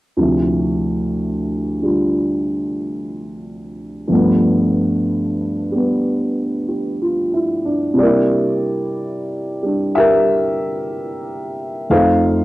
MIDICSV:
0, 0, Header, 1, 2, 480
1, 0, Start_track
1, 0, Tempo, 975610
1, 93, Time_signature, 4, 2, 24, 8
1, 6123, End_track
2, 0, Start_track
2, 0, Title_t, "Upright piano"
2, 0, Program_c, 0, 0
2, 82, Note_on_c, 0, 38, 41
2, 91, Note_on_c, 0, 48, 37
2, 101, Note_on_c, 0, 53, 32
2, 108, Note_on_c, 0, 64, 35
2, 172, Control_c, 0, 64, 127
2, 896, Note_on_c, 0, 50, 35
2, 901, Note_on_c, 0, 55, 30
2, 909, Note_on_c, 0, 65, 35
2, 2005, Note_on_c, 0, 43, 46
2, 2007, Note_off_c, 0, 53, 0
2, 2012, Note_off_c, 0, 38, 0
2, 2014, Note_off_c, 0, 50, 0
2, 2014, Note_on_c, 0, 53, 40
2, 2016, Note_off_c, 0, 55, 0
2, 2017, Note_off_c, 0, 48, 0
2, 2020, Note_off_c, 0, 65, 0
2, 2022, Note_on_c, 0, 57, 40
2, 2026, Note_off_c, 0, 64, 0
2, 2026, Control_c, 0, 64, 0
2, 2032, Note_on_c, 0, 59, 51
2, 2110, Control_c, 0, 64, 127
2, 2813, Note_on_c, 0, 55, 35
2, 2822, Note_off_c, 0, 59, 0
2, 2830, Note_on_c, 0, 59, 38
2, 3288, Note_on_c, 0, 67, 36
2, 3452, Note_on_c, 0, 65, 37
2, 3540, Note_off_c, 0, 67, 0
2, 3609, Note_on_c, 0, 64, 37
2, 3762, Note_off_c, 0, 65, 0
2, 3765, Note_on_c, 0, 62, 41
2, 3862, Note_off_c, 0, 64, 0
2, 3904, Note_on_c, 0, 48, 46
2, 3916, Note_off_c, 0, 55, 0
2, 3923, Note_on_c, 0, 55, 43
2, 3927, Note_off_c, 0, 43, 0
2, 3929, Note_on_c, 0, 74, 59
2, 3932, Note_off_c, 0, 53, 0
2, 3936, Note_off_c, 0, 57, 0
2, 3938, Note_off_c, 0, 59, 0
2, 3940, Note_on_c, 0, 67, 47
2, 3941, Control_c, 0, 64, 0
2, 3942, Note_on_c, 0, 58, 42
2, 3942, Note_on_c, 0, 70, 43
2, 3958, Note_on_c, 0, 64, 49
2, 4021, Note_off_c, 0, 62, 0
2, 4021, Control_c, 0, 64, 127
2, 4729, Note_off_c, 0, 55, 0
2, 4736, Note_on_c, 0, 55, 35
2, 4751, Note_on_c, 0, 62, 35
2, 4882, Note_off_c, 0, 67, 0
2, 4883, Note_off_c, 0, 70, 0
2, 4896, Note_on_c, 0, 76, 85
2, 4906, Note_on_c, 0, 67, 65
2, 4910, Note_on_c, 0, 70, 63
2, 4925, Note_off_c, 0, 74, 0
2, 5683, Note_off_c, 0, 76, 0
2, 5839, Note_off_c, 0, 67, 0
2, 5840, Note_off_c, 0, 48, 0
2, 5841, Note_off_c, 0, 70, 0
2, 5850, Note_off_c, 0, 55, 0
2, 5853, Note_on_c, 0, 41, 42
2, 5855, Note_on_c, 0, 53, 36
2, 5857, Note_off_c, 0, 62, 0
2, 5857, Note_on_c, 0, 57, 38
2, 5858, Note_off_c, 0, 58, 0
2, 5858, Note_on_c, 0, 63, 49
2, 5858, Note_on_c, 0, 69, 50
2, 5858, Note_on_c, 0, 77, 75
2, 5860, Note_on_c, 0, 72, 48
2, 5862, Control_c, 0, 64, 0
2, 5867, Note_off_c, 0, 64, 0
2, 5934, Control_c, 0, 64, 127
2, 6123, Note_off_c, 0, 41, 0
2, 6123, Note_off_c, 0, 53, 0
2, 6123, Note_off_c, 0, 57, 0
2, 6123, Note_off_c, 0, 63, 0
2, 6123, Note_off_c, 0, 69, 0
2, 6123, Note_off_c, 0, 72, 0
2, 6123, Note_off_c, 0, 77, 0
2, 6123, End_track
0, 0, End_of_file